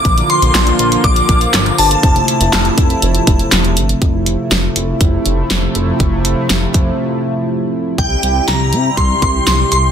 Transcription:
<<
  \new Staff \with { instrumentName = "Synth bell" } { \time 4/4 \key f \major \tempo 4 = 121 d'''8 c'''4. d'''4. a''8~ | a''2.~ a''8 r8 | r1 | r1 |
g''4 bes''4 c'''8 c'''8 c'''8 c'''8 | }
  \new Staff \with { instrumentName = "Analog synth pad" } { \time 4/4 \key f \major << { <d bes f'>1 | <c a e'>1 | <c a e'>1~ | <c a e'>1 |
<c e' g'>1 | } \\ { f1~ | f1 | f1~ | f1 |
g1 | } >> }
  \new Staff \with { instrumentName = "Analog synth bass" } { \clef bass \time 4/4 \key f \major bes,,8 r16 bes,,16 bes,,8 bes,,8 bes,,8 bes,,8 g,,8 g,,8 | f,,8 r16 f,,16 f,,8 f,,8 f,,8 f,,8 e,,8 g,,8 | f,,4 f,,8 f,,8 f,,8 f,,8 f,,8 f,,8 | f,,4 f,,8 f,,8 r2 |
c,8 c,8 c,8 c8 c,8 c,8 c,8 c,8 | }
  \new DrumStaff \with { instrumentName = "Drums" } \drummode { \time 4/4 <hh bd>16 hh16 hh16 hh16 <hc hh sn>16 hh16 hh16 hh16 <hh bd>16 hh16 <hh bd>16 hh16 <hc hh sn>16 hh16 hho16 hh16 | <hh bd>16 hh16 hh16 hh16 <hc hh sn>16 hh16 <hh bd>16 hh16 hh16 hh16 <hh bd>16 hh16 <hc hh sn>16 hh16 hh16 hh16 | <hh bd>8 hh8 <hh sn>8 hh8 <hh bd>8 hh8 <hh sn>8 hh8 | <hh bd>8 hh8 <hh sn>8 <hh bd>8 r4 r4 |
<hh bd>8 hh8 <hh sn>8 hh8 <hh bd>8 <hh bd>8 <hh sn>8 hh8 | }
>>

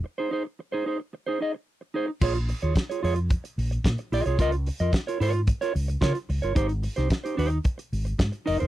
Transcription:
<<
  \new Staff \with { instrumentName = "Clean electric guitar" } { \time 4/4 \key bes \dorian \tempo 4 = 110 r16 <ees' aes' c''>16 <ees' aes' c''>16 r8 <ees' aes' c''>16 <ees' aes' c''>16 r8 <ees' aes' c''>16 <ees' aes' ees''>16 r8. <ees' aes' c''>16 r16 | <f' aes' des''>16 r8 <f' aes' des''>16 r16 <f' aes' des''>16 <f' aes' des''>16 r4. r16 <f' aes' ees''>16 <f' aes' des''>16 | <f' bes' ees''>16 r8 <f' bes' ees''>16 r16 <f' bes' des''>16 <f' bes' des''>16 r8 <f' bes' des''>16 r8 <f' bes' des''>16 r8 <f' bes' des''>16 | <ees' g' c''>16 r8 <ees' g' c''>16 r16 <ees' g' c''>16 <ees' g' c''>16 r4. r16 <ees' bes' ees''>16 <ees' bes' c''>16 | }
  \new Staff \with { instrumentName = "Fingered electric bass" } { \clef bass \time 4/4 \key bes \dorian r1 | bes,,8. ees,16 r8 f,8. r16 bes,,8 bes,16 r16 bes,,16 c,16 | des,8. f,16 r8 aes,8. r16 des,8 des16 r16 des,16 g,,16 | aes,,8. c,16 r8 ees,8 r8 aes,,8 aes,16 r16 f,,16 e,,16 | }
  \new DrumStaff \with { instrumentName = "Drums" } \drummode { \time 4/4 r4 r4 r4 r4 | <cymc bd>16 hh16 hho16 hh16 <hh bd sn>16 hh16 hho16 hh16 <hh bd>16 hh16 hho16 hh16 <hh bd sn>16 hh16 hho16 hh16 | <hh bd>16 hh16 hho16 hh16 <hh bd sn>16 hh16 hho16 hh16 <hh bd>16 hh16 hho16 hh16 <hh bd sn>16 hh16 hho16 hh16 | <hh bd>16 hh16 hho16 <hh sn>16 <hh bd sn>16 hh16 hho16 hh16 <hh bd>16 hh16 hho16 hh16 <hh bd sn>16 hh16 hho16 hh16 | }
>>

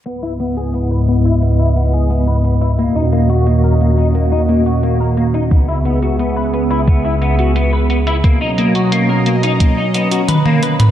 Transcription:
<<
  \new Staff \with { instrumentName = "Clean electric guitar" } { \time 4/4 \key cis \dorian \tempo 4 = 88 b16 e'16 b16 gis'16 b16 b'16 b16 e'16 b16 e'16 b16 gis'16 b16 b'16 b16 e'16 | ais16 dis'16 ais16 fis'16 ais16 ais'16 ais16 dis'16 ais16 dis'16 ais16 fis'16 ais16 ais'16 ais16 dis'16 | b16 e'16 b16 fis'16 b16 b'16 b16 e'16 b16 e'16 b16 fis'16 b16 b'16 b16 e'16 | ais16 dis'16 ais16 fis'16 ais16 ais'16 ais16 dis'16 ais16 dis'16 b16 fis'16 b'16 ais16 b'16 b'16 | }
  \new Staff \with { instrumentName = "Analog synth pad" } { \time 4/4 \key cis \dorian <cis, gis, b e' dis''>1 | <dis, ais, cis' fis' dis''>1 | <cis, cis b gis' e''>1 | <b, fis cis' dis'' ais''>1 | }
  \new DrumStaff \with { instrumentName = "Drums" } \drummode { \time 4/4 hh8 hh16 hh16 hh8 hh16 hh16 hh8 hh16 hh16 hh8 hh16 hh16 | hh8 hh16 hh16 hh8 hh16 hh16 hh8 hh16 hh16 hh8 hh16 hh16 | <hh bd>8 hh16 hh16 hh8 hh16 hh16 <hh bd>8 hh16 hh16 hh8 hh16 hh16 | <hh bd>8 hh16 hh16 hh8 hh16 hh16 <hh bd>8 hh16 hh16 <hh tommh>16 tommh16 hh16 <hh toml>16 | }
>>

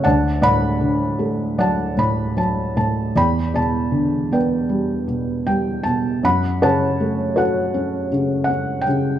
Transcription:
<<
  \new Staff \with { instrumentName = "Felt piano" } { \time 4/4 \key e \dorian \tempo 4 = 78 << { a''8 b''4. a''8 b''8 a''8 a''8 | b''8 a''4 g''4 r8 g''8 a''8 | b''8 a''4 fis''4 r8 fis''8 g''8 | } \\ { <d'' fis''>8 <d'' fis''>4. <d'' fis''>2 | <d'' g''>8 d''4 <b' d''>2 r8 | fis''8 <cis'' fis''>4 <a' cis''>2 r8 | } >> }
  \new Staff \with { instrumentName = "Felt piano" } { \clef bass \time 4/4 \key e \dorian d,8 a,8 d8 a8 fis8 a,8 fis8 a,8 | e,8 b,8 d8 b8 g8 b,8 g8 b,8 | fis,8 cis8 a8 fis'8 cis'8 cis8 cis'8 cis8 | }
>>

